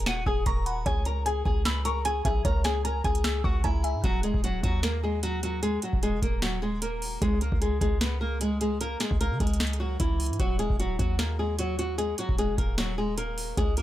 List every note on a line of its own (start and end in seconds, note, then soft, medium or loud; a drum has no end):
0.00 0.25 D#1 loud
0.00 0.26 D#5 medium
0.00 0.45 A#5 medium
0.06 0.23 F#4 medium
0.06 0.22 F#5 loud
0.06 0.86 D#7 medium
0.06 snare loud
0.06 closed hi-hat medium
0.26 0.45 D#1 loud
0.26 0.43 G#4 medium
0.26 0.42 G#5 medium
0.26 0.86 D#6 medium
0.26 kick medium
0.46 0.84 D#1 loud
0.46 0.84 A#4 medium
0.46 0.84 A#5 medium
0.46 0.86 A#5 loud
0.46 0.65 C#6 medium
0.46 kick loud
0.46 closed hi-hat medium
0.66 0.86 F#5 medium
0.66 0.85 B5 medium
0.66 closed hi-hat medium
0.86 1.43 C#2 loud
0.86 1.02 G#4 medium
0.86 1.85 C#5 loud
0.86 1.02 G#5 loud
0.86 kick loud
0.86 closed hi-hat medium
1.05 1.22 A#4 medium
1.05 1.22 A#5 medium
1.05 closed hi-hat medium
1.26 1.42 G#4 medium
1.26 1.41 G#5 medium
1.26 2.04 G#5 medium
1.26 closed hi-hat medium
1.45 2.22 C#2 loud
1.45 1.62 G#4 medium
1.45 1.61 G#5 medium
1.45 kick loud
1.65 1.82 B4 medium
1.65 1.81 B5 medium
1.65 2.65 E6 medium
1.65 snare loud
1.65 closed hi-hat medium
1.85 2.01 A#4 medium
1.85 2.01 A#5 medium
1.85 2.85 C#6 medium
1.85 closed hi-hat medium
2.05 2.21 G#4 medium
2.05 2.83 G#5 medium
2.05 2.21 G#5 medium
2.05 closed hi-hat medium
2.25 2.44 B1 loud
2.25 2.41 G#4 medium
2.25 3.24 E5 medium
2.25 2.41 G#5 medium
2.25 kick loud
2.25 closed hi-hat medium
2.45 3.02 C#2 loud
2.45 2.61 A#4 medium
2.45 3.44 C#5 loud
2.45 2.61 A#5 loud
2.45 kick loud
2.45 closed hi-hat medium
2.64 2.81 G#4 medium
2.64 2.80 G#5 medium
2.64 snare loud
2.64 closed hi-hat medium
2.85 3.01 A#4 medium
2.85 3.63 G#5 medium
2.85 3.00 A#5 loud
2.85 closed hi-hat medium
3.04 3.43 C#2 loud
3.04 3.42 G#4 medium
3.04 3.42 G#5 medium
3.04 kick medium
3.04 closed hi-hat soft
3.15 closed hi-hat medium
3.24 4.04 E6 medium
3.24 snare loud
3.24 closed hi-hat medium
3.44 3.63 C#2 loud
3.44 3.60 F#4 medium
3.44 3.60 F#5 medium
3.44 4.04 C#6 medium
3.44 kick loud
3.64 3.96 C#2 loud
3.64 4.02 E4 medium
3.64 4.02 E5 medium
3.64 4.04 G#5 loud
3.64 3.83 A#5 medium
3.64 kick loud
3.64 closed hi-hat medium
3.84 4.04 E5 medium
3.84 4.03 G#5 medium
3.84 closed hi-hat medium
3.94 4.03 G#2 medium
4.04 4.33 D#1 loud
4.04 4.20 F#3 medium
4.04 4.20 F#4 loud
4.04 kick loud
4.04 closed hi-hat medium
4.23 4.40 G#3 medium
4.23 4.39 G#4 medium
4.23 closed hi-hat medium
4.34 4.62 D#1 loud
4.34 kick medium
4.44 4.60 F#3 medium
4.44 4.59 F#4 medium
4.44 closed hi-hat medium
4.63 5.79 D#2 loud
4.63 4.80 F#3 medium
4.63 4.79 F#4 medium
4.63 kick medium
4.63 closed hi-hat medium
4.83 4.99 A#3 medium
4.83 4.99 A#4 medium
4.83 snare loud
4.83 closed hi-hat medium
5.03 5.20 G#3 medium
5.03 5.19 G#4 medium
5.23 5.39 F#3 medium
5.23 5.39 F#4 medium
5.23 closed hi-hat medium
5.43 5.59 F#3 medium
5.43 5.59 F#4 medium
5.43 closed hi-hat medium
5.63 5.79 G#3 medium
5.63 5.78 G#4 loud
5.63 closed hi-hat medium
5.82 5.99 F#3 medium
5.82 5.99 F#4 medium
5.82 closed hi-hat medium
5.93 6.14 D#1 loud
5.93 kick medium
6.03 6.19 G#3 medium
6.03 6.18 G#4 loud
6.03 closed hi-hat medium
6.13 6.22 F#1 medium
6.22 7.18 D#1 loud
6.22 6.39 A#3 medium
6.22 6.38 A#4 medium
6.22 kick medium
6.22 closed hi-hat medium
6.42 6.59 F#3 medium
6.42 6.58 F#4 loud
6.42 snare loud
6.42 closed hi-hat medium
6.62 6.78 G#3 medium
6.62 6.78 G#4 medium
6.82 7.20 A#3 medium
6.82 7.19 A#4 medium
6.82 closed hi-hat medium
7.02 open hi-hat medium
7.22 7.51 C#2 loud
7.22 7.38 G#3 medium
7.22 7.37 G#4 loud
7.22 kick loud
7.22 closed hi-hat medium
7.41 7.58 A#3 medium
7.41 7.57 A#4 medium
7.41 closed hi-hat medium
7.52 7.80 C#2 loud
7.52 kick medium
7.61 7.78 G#3 medium
7.61 7.77 G#4 medium
7.61 closed hi-hat medium
7.81 8.96 C#2 loud
7.81 7.97 G#3 medium
7.81 7.97 G#4 medium
7.81 kick medium
7.81 closed hi-hat medium
8.01 8.18 B3 medium
8.01 8.17 B4 medium
8.01 snare loud
8.01 closed hi-hat medium
8.21 8.37 A#3 medium
8.21 8.37 A#4 medium
8.41 8.57 G#3 medium
8.41 8.57 G#4 medium
8.41 closed hi-hat medium
8.61 8.77 G#3 medium
8.61 8.77 G#4 medium
8.61 closed hi-hat medium
8.81 8.97 A#3 medium
8.81 8.97 A#4 loud
8.81 closed hi-hat medium
9.00 9.17 G#3 medium
9.00 9.16 G#4 medium
9.00 snare loud
9.00 closed hi-hat medium
9.11 9.32 C#2 loud
9.11 kick medium
9.21 9.37 A#3 medium
9.21 9.36 A#4 medium
9.21 closed hi-hat medium
9.31 9.40 C#3 medium
9.40 9.97 C#2 loud
9.40 9.78 G#3 medium
9.40 9.78 G#4 medium
9.40 kick medium
9.40 closed hi-hat medium
9.47 closed hi-hat medium
9.53 closed hi-hat medium
9.60 snare loud
9.60 closed hi-hat medium
9.67 closed hi-hat medium
9.73 closed hi-hat medium
9.80 9.96 F#3 medium
9.80 9.96 F#4 medium
10.00 10.32 C#2 loud
10.00 10.38 E3 medium
10.00 10.37 E4 medium
10.00 kick medium
10.00 closed hi-hat medium
10.20 closed hi-hat medium
10.20 open hi-hat medium
10.26 10.39 G#2 loud
10.26 closed hi-hat medium
10.33 closed hi-hat soft
10.40 10.69 D#1 loud
10.40 10.56 F#3 medium
10.40 10.55 F#4 loud
10.40 kick loud
10.40 closed hi-hat medium
10.59 10.75 G#3 medium
10.59 10.75 G#4 medium
10.59 closed hi-hat medium
10.70 10.98 D#1 loud
10.70 kick medium
10.80 10.96 F#3 medium
10.80 10.95 F#4 medium
10.80 closed hi-hat medium
10.99 12.14 D#2 loud
10.99 11.15 F#3 medium
10.99 11.15 F#4 medium
10.99 kick medium
10.99 closed hi-hat medium
11.19 11.35 A#3 medium
11.19 11.35 A#4 medium
11.19 snare loud
11.19 closed hi-hat medium
11.39 11.55 G#3 medium
11.39 11.55 G#4 medium
11.59 11.75 F#3 medium
11.59 11.75 F#4 medium
11.59 closed hi-hat medium
11.79 11.95 F#3 medium
11.79 11.94 F#4 medium
11.79 closed hi-hat medium
11.98 12.14 G#3 medium
11.98 12.14 G#4 loud
11.98 closed hi-hat medium
12.18 12.35 F#3 medium
12.18 12.34 F#4 medium
12.18 closed hi-hat medium
12.29 12.50 D#1 loud
12.29 kick medium
12.38 12.55 G#3 medium
12.38 12.54 G#4 medium
12.38 closed hi-hat medium
12.49 12.58 F#1 loud
12.58 13.54 D#1 loud
12.58 12.74 A#3 medium
12.58 12.74 A#4 medium
12.58 kick medium
12.58 closed hi-hat medium
12.78 12.94 F#3 medium
12.78 12.94 F#4 loud
12.78 snare loud
12.78 closed hi-hat medium
12.98 13.14 G#3 medium
12.98 13.14 G#4 medium
13.18 13.55 A#3 medium
13.18 13.55 A#4 medium
13.18 closed hi-hat medium
13.38 open hi-hat medium
13.57 13.82 C#2 loud
13.57 13.74 G#3 medium
13.57 13.73 G#4 loud
13.57 kick loud
13.57 closed hi-hat medium
13.77 13.82 A#3 medium
13.77 13.82 A#4 medium
13.77 closed hi-hat medium